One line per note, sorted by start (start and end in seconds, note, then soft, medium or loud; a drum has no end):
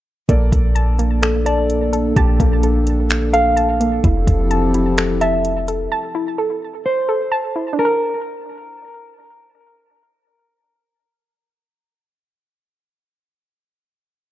0.29 0.51 A#1 loud
0.29 0.98 A#3 medium
0.29 4.00 A#3 medium
0.29 4.00 D4 medium
0.29 2.15 A4 medium
0.29 4.00 A4 medium
0.29 4.00 D5 medium
0.29 kick loud
0.29 closed hi-hat medium
0.52 2.12 A#1 loud
0.52 kick medium
0.52 closed hi-hat medium
0.75 1.45 A5 medium
0.75 closed hi-hat medium
0.99 2.39 A#3 medium
0.99 closed hi-hat medium
1.22 1.92 A4 medium
1.22 finger snap loud
1.22 closed hi-hat medium
1.46 2.12 D5 medium
1.46 2.15 A5 medium
1.46 closed hi-hat medium
1.70 closed hi-hat medium
1.93 2.62 A4 medium
1.93 closed hi-hat medium
2.16 2.39 A#1 loud
2.16 4.02 G4 medium
2.16 3.55 A5 loud
2.16 kick loud
2.16 closed hi-hat medium
2.40 4.00 A#1 loud
2.40 3.79 A#3 medium
2.40 kick medium
2.40 closed hi-hat medium
2.63 3.32 A4 medium
2.63 closed hi-hat medium
2.87 closed hi-hat medium
3.10 finger snap loud
3.10 closed hi-hat medium
3.33 4.04 A4 medium
3.33 4.00 F5 loud
3.33 closed hi-hat medium
3.56 4.04 A5 medium
3.56 closed hi-hat medium
3.80 4.04 A#3 medium
3.80 closed hi-hat medium
4.04 4.26 F1 loud
4.04 5.89 F3 medium
4.04 5.89 C4 medium
4.04 5.89 E4 medium
4.04 4.73 E4 medium
4.04 5.90 G4 medium
4.04 5.89 A4 medium
4.04 kick loud
4.04 closed hi-hat medium
4.27 5.87 F1 loud
4.27 kick medium
4.27 closed hi-hat medium
4.51 5.20 A5 medium
4.51 closed hi-hat medium
4.74 6.14 E4 medium
4.74 closed hi-hat medium
4.98 5.67 A4 medium
4.98 finger snap loud
4.98 closed hi-hat medium
5.21 5.87 E5 medium
5.21 5.90 A5 loud
5.21 closed hi-hat medium
5.45 closed hi-hat medium
5.68 6.37 A4 medium
5.68 closed hi-hat medium
5.92 7.30 A5 loud
6.15 7.54 E4 medium
6.38 7.07 A4 medium
6.86 7.75 C5 medium
7.09 7.79 A4 medium
7.32 7.78 A5 loud
7.56 7.79 E4 medium
7.73 11.82 D4 medium
7.79 9.16 A#4 medium
7.79 11.88 A5 medium
7.85 11.94 A#4 medium